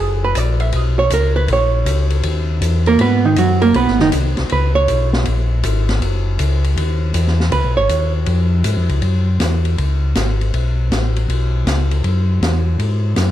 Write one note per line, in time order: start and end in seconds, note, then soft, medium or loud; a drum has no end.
0.00 0.35 F#1 medium
0.00 0.23 G#4 medium
0.24 0.37 B4 medium
0.35 0.73 A#1 medium
0.35 0.61 D5 medium
0.35 hi-hat pedal medium
0.35 ride medium
0.60 0.75 E5 loud
0.60 ride soft
0.72 1.10 B1 medium
0.72 0.98 D#5 medium
0.72 ride medium
0.99 1.11 C#5 medium
1.10 1.48 C#2 medium
1.10 1.36 A#4 medium
1.10 hi-hat pedal medium
1.10 ride medium
1.36 1.49 B4 medium
1.48 1.85 A#1 medium
1.48 ride medium
1.53 2.09 C#5 medium
1.86 2.23 C#2 medium
1.86 hi-hat pedal medium
1.86 ride medium
2.10 ride soft
2.23 2.61 D#2 medium
2.23 ride medium
2.61 2.98 E2 medium
2.61 hi-hat pedal medium
2.61 ride medium
2.86 3.00 A#3 medium
2.86 3.00 A#4 medium
2.86 ride soft
2.99 3.36 G#2 medium
2.99 3.25 B3 medium
2.99 3.24 B4 medium
2.99 ride medium
3.25 3.38 D#3 medium
3.25 3.37 D#4 medium
3.36 3.73 F#2 medium
3.36 3.62 F#3 medium
3.36 3.62 F#4 medium
3.36 hi-hat pedal soft
3.36 ride medium
3.62 3.75 A#3 medium
3.62 3.75 A#4 medium
3.62 ride soft
3.74 3.87 B1 medium
3.74 4.00 B3 medium
3.74 4.00 B4 medium
3.74 ride medium
3.88 4.00 G#1 medium
3.88 snare soft
3.99 4.12 F#1 medium
3.99 4.08 D#3 medium
3.99 4.08 D#4 medium
3.99 snare soft
4.12 4.36 C2 medium
4.12 hi-hat pedal medium
4.12 ride medium
4.37 4.45 C2 soft
4.37 snare soft
4.37 ride soft
4.49 4.88 C#2 medium
4.49 4.75 B4 medium
4.49 ride medium
4.75 5.10 C#5 loud
4.88 5.26 B1 medium
4.88 hi-hat pedal medium
4.88 ride medium
5.13 snare medium
5.25 5.63 A#1 medium
5.25 ride medium
5.63 6.01 G#1 medium
5.63 hi-hat pedal medium
5.63 ride medium
5.89 snare soft
5.89 ride soft
6.01 6.38 F#1 medium
6.01 ride medium
6.39 6.76 C#2 medium
6.39 hi-hat pedal medium
6.39 ride medium
6.64 ride soft
6.77 7.13 D#2 medium
6.77 ride medium
7.14 7.51 E2 medium
7.14 hi-hat pedal medium
7.14 ride medium
7.27 snare soft
7.40 snare soft
7.52 7.64 C#2 medium
7.52 7.76 B4 medium
7.52 ride medium
7.65 7.77 B1 medium
7.77 7.89 G#1 medium
7.77 8.12 C#5 medium
7.89 8.26 D#2 medium
7.89 hi-hat pedal soft
7.89 ride medium
8.26 8.64 F2 medium
8.26 ride medium
8.64 8.77 G#2 medium
8.64 hi-hat pedal medium
8.64 ride medium
8.77 8.90 F2 medium
8.89 9.02 C#2 medium
8.89 ride soft
9.02 9.39 F#2 medium
9.02 ride medium
9.40 9.77 E2 medium
9.40 snare medium
9.40 hi-hat pedal medium
9.40 ride medium
9.65 ride soft
9.78 10.15 C#2 medium
9.78 ride soft
10.15 10.52 G#1 medium
10.15 snare medium
10.15 hi-hat pedal medium
10.15 ride medium
10.41 ride soft
10.54 10.90 B1 medium
10.54 ride medium
10.90 11.27 A1 medium
10.90 snare medium
10.90 hi-hat pedal soft
10.90 ride medium
11.16 ride soft
11.29 11.65 B1 medium
11.29 ride medium
11.66 12.02 C#2 medium
11.66 snare medium
11.66 hi-hat pedal soft
11.66 ride medium
11.91 ride soft
12.04 12.40 F#2 medium
12.04 ride soft
12.41 12.78 E2 medium
12.41 snare medium
12.41 hi-hat pedal soft
12.41 ride medium
12.79 13.15 G#2 medium
12.79 ride medium
13.16 13.31 F#2 medium
13.16 snare medium
13.16 hi-hat pedal medium
13.16 ride medium